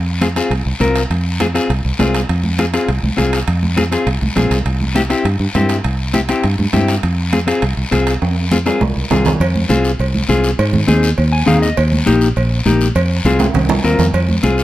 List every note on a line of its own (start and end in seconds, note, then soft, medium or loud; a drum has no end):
0.00 0.39 F2 medium
0.21 0.27 C4 medium
0.21 0.27 F4 medium
0.21 0.27 G#4 medium
0.21 high conga medium
0.21 high timbale medium
0.21 short guiro medium
0.36 0.52 C4 medium
0.36 0.52 F4 medium
0.36 0.52 G#4 medium
0.36 high timbale medium
0.36 short guiro medium
0.50 0.63 C2 medium
0.50 high conga soft
0.50 high timbale medium
0.50 long guiro medium
0.66 0.72 C2 medium
0.80 1.04 C2 medium
0.80 1.01 C4 medium
0.80 1.02 F4 medium
0.80 1.02 A#4 medium
0.80 high conga medium
0.80 high timbale medium
0.80 short guiro medium
0.95 high timbale medium
0.95 short guiro medium
1.10 1.58 F2 medium
1.10 high conga soft
1.10 high timbale medium
1.10 long guiro medium
1.40 1.46 C4 medium
1.40 1.46 F4 medium
1.40 1.46 G#4 medium
1.40 high conga medium
1.40 high timbale medium
1.40 short guiro medium
1.54 1.71 C4 medium
1.54 1.71 F4 medium
1.54 1.71 G#4 medium
1.54 high timbale medium
1.54 short guiro medium
1.70 1.82 C2 medium
1.70 high conga soft
1.70 high timbale medium
1.70 long guiro medium
1.85 1.91 C2 medium
1.99 2.24 C2 medium
1.99 2.20 C4 medium
1.99 2.20 F4 medium
1.99 2.21 G#4 medium
1.99 high conga medium
1.99 high timbale medium
1.99 low timbale medium
1.99 short guiro medium
2.15 high timbale medium
2.15 short guiro medium
2.29 2.77 F2 medium
2.29 high conga soft
2.29 high timbale medium
2.29 long guiro medium
2.44 high conga medium
2.59 2.64 C4 medium
2.59 2.64 F4 medium
2.59 2.65 G#4 medium
2.59 high conga medium
2.59 high timbale medium
2.59 short guiro medium
2.73 2.89 C4 medium
2.73 2.90 F4 medium
2.73 2.90 G#4 medium
2.73 high timbale medium
2.73 short guiro medium
2.88 3.00 C2 medium
2.88 high conga soft
2.88 high timbale medium
2.88 long guiro medium
3.03 3.09 C2 medium
3.03 high conga medium
3.17 3.42 C2 medium
3.17 3.38 C4 medium
3.17 3.39 F4 medium
3.17 3.39 G#4 medium
3.17 high conga medium
3.17 high timbale medium
3.17 short guiro medium
3.33 high timbale medium
3.33 short guiro medium
3.48 3.95 F2 medium
3.48 high conga soft
3.48 high timbale medium
3.48 long guiro medium
3.63 high conga medium
3.77 3.82 C4 medium
3.77 3.83 F4 medium
3.77 3.83 G#4 medium
3.77 high conga medium
3.77 high timbale medium
3.77 short guiro medium
3.91 4.08 C4 medium
3.91 4.08 F4 medium
3.91 4.08 G#4 medium
3.91 high timbale medium
3.91 short guiro medium
4.07 4.19 C2 medium
4.07 high conga soft
4.07 high timbale medium
4.07 long guiro medium
4.22 4.28 C2 medium
4.22 high conga medium
4.36 4.50 A#1 medium
4.36 4.57 C4 medium
4.36 4.57 F4 medium
4.36 4.58 G#4 medium
4.36 high conga medium
4.36 high timbale medium
4.36 low timbale medium
4.36 short guiro medium
4.51 4.64 C2 medium
4.51 high timbale medium
4.51 short guiro medium
4.66 5.13 C2 medium
4.66 high conga soft
4.66 high timbale medium
4.66 long guiro medium
4.81 high conga medium
4.95 5.01 C4 medium
4.95 5.01 E4 medium
4.95 5.01 G4 medium
4.95 high conga medium
4.95 high timbale medium
4.95 short guiro medium
5.10 5.26 C4 medium
5.10 5.26 E4 medium
5.10 5.26 G4 medium
5.10 high timbale medium
5.10 short guiro medium
5.25 5.37 G2 medium
5.25 high conga soft
5.25 high timbale medium
5.25 long guiro medium
5.40 5.46 G2 medium
5.55 5.79 G2 medium
5.55 5.76 C4 medium
5.55 5.76 E4 medium
5.55 5.76 G4 medium
5.55 high conga medium
5.55 high timbale medium
5.55 low timbale medium
5.55 short guiro medium
5.69 high timbale medium
5.69 short guiro medium
5.84 6.32 C2 medium
5.84 high conga soft
5.84 high timbale medium
5.84 long guiro medium
6.13 6.19 C4 medium
6.13 6.19 E4 medium
6.13 6.20 G4 medium
6.13 high conga medium
6.13 high timbale medium
6.13 short guiro medium
6.29 6.45 C4 medium
6.29 6.45 E4 medium
6.29 6.45 G4 medium
6.29 high timbale medium
6.29 short guiro medium
6.44 6.56 G2 medium
6.44 high conga soft
6.44 high timbale medium
6.44 long guiro medium
6.59 6.65 G2 medium
6.59 high conga medium
6.73 6.97 G2 medium
6.73 6.94 C4 medium
6.73 6.94 E4 medium
6.73 6.94 G4 medium
6.73 high conga medium
6.73 high timbale medium
6.73 low timbale medium
6.73 short guiro medium
6.88 high timbale medium
6.88 short guiro medium
7.03 7.51 F2 medium
7.03 high conga soft
7.03 high timbale medium
7.03 long guiro medium
7.33 7.38 C4 medium
7.33 7.38 F4 medium
7.33 7.38 G#4 medium
7.33 high conga medium
7.33 high timbale medium
7.33 short guiro medium
7.47 7.63 C4 medium
7.47 7.63 F4 medium
7.47 7.63 G#4 medium
7.47 high timbale medium
7.47 short guiro medium
7.62 7.74 C2 medium
7.62 high conga soft
7.62 high timbale medium
7.62 long guiro medium
7.77 7.83 C2 medium
7.91 8.16 C2 medium
7.91 8.13 C4 medium
7.91 8.13 F4 medium
7.91 8.13 G#4 medium
7.91 high conga medium
7.91 high timbale medium
7.91 short guiro medium
8.07 high timbale medium
8.07 short guiro medium
8.22 8.69 F2 medium
8.22 high conga soft
8.22 high timbale medium
8.22 long guiro medium
8.51 8.57 C4 medium
8.51 8.57 F4 medium
8.51 8.57 G#4 medium
8.51 high conga loud
8.51 short guiro medium
8.66 8.82 C4 medium
8.66 8.82 F4 medium
8.66 8.82 G#4 medium
8.66 low timbale medium
8.66 short guiro medium
8.81 8.93 C2 medium
8.81 high conga medium
8.81 low timbale medium
8.81 long guiro medium
8.96 9.02 C2 medium
9.10 9.34 C2 medium
9.10 9.32 C4 medium
9.10 9.32 F4 medium
9.10 9.32 G#4 medium
9.10 low conga medium
9.10 low timbale medium
9.10 short guiro medium
9.25 low conga medium
9.25 low timbale loud
9.25 short guiro medium
9.40 9.64 F2 loud
9.40 cowbell loud
9.40 long guiro medium
9.56 high conga medium
9.69 9.94 C2 loud
9.69 9.90 C4 medium
9.69 9.90 F4 medium
9.69 9.91 G#4 medium
9.69 high conga medium
9.69 short guiro medium
9.85 short guiro medium
9.99 10.23 C2 medium
9.99 cowbell medium
9.99 high conga soft
9.99 long guiro medium
10.15 high conga medium
10.29 10.53 C2 medium
10.29 10.50 C4 medium
10.29 10.50 F4 medium
10.29 10.50 G#4 medium
10.29 high conga medium
10.29 short guiro medium
10.44 short guiro medium
10.59 10.83 G#2 loud
10.59 cowbell loud
10.59 high conga soft
10.59 long guiro medium
10.73 high conga medium
10.73 low conga medium
10.87 11.12 D#2 loud
10.87 11.09 C4 medium
10.87 11.09 D#4 medium
10.87 11.09 G#4 medium
10.87 high conga medium
10.87 short guiro medium
11.03 short guiro medium
11.18 11.42 D#2 loud
11.18 cowbell medium
11.18 high conga soft
11.18 long guiro medium
11.32 11.46 G#5 medium
11.46 11.72 D#2 medium
11.46 11.68 C4 medium
11.46 11.68 D#4 medium
11.46 11.68 G#4 medium
11.46 11.61 F5 medium
11.46 high conga medium
11.46 low conga medium
11.46 short guiro medium
11.62 11.76 D#5 medium
11.62 short guiro medium
11.77 12.01 D#2 loud
11.77 cowbell loud
11.77 high conga soft
11.77 long guiro medium
11.92 high conga medium
12.06 12.31 A#1 medium
12.06 12.27 A#3 medium
12.06 12.27 D#4 medium
12.06 12.28 G4 loud
12.06 high conga medium
12.06 short guiro medium
12.21 short guiro medium
12.36 12.60 A#1 medium
12.36 cowbell medium
12.36 high conga soft
12.36 long guiro medium
12.66 12.90 A#1 medium
12.66 12.87 A#3 medium
12.66 12.87 D#4 medium
12.66 12.87 G4 medium
12.66 high conga medium
12.66 short guiro medium
12.81 short guiro medium
12.95 13.19 F2 loud
12.95 cowbell loud
12.95 high conga soft
12.95 long guiro medium
13.24 13.49 C2 loud
13.24 13.46 C4 medium
13.24 13.46 F4 medium
13.24 13.46 G#4 medium
13.24 high conga medium
13.24 short guiro medium
13.39 high conga medium
13.39 high timbale loud
13.39 short guiro medium
13.54 13.79 C2 medium
13.54 cowbell medium
13.54 low conga medium
13.54 high timbale medium
13.54 long guiro medium
13.69 low conga medium
13.69 low timbale loud
13.84 13.98 D#2 medium
13.84 14.05 C4 medium
13.84 14.05 F4 medium
13.84 14.05 A#4 medium
13.84 short guiro medium
13.99 14.12 F2 medium
13.99 low conga medium
13.99 low timbale medium
13.99 short guiro medium
14.14 14.38 F2 loud
14.14 cowbell loud
14.14 high conga soft
14.14 long guiro medium
14.29 high conga medium
14.43 14.63 C2 loud
14.43 14.63 C4 medium
14.43 14.63 F4 medium
14.43 14.63 G#4 medium
14.43 high conga medium
14.43 short guiro medium
14.58 short guiro medium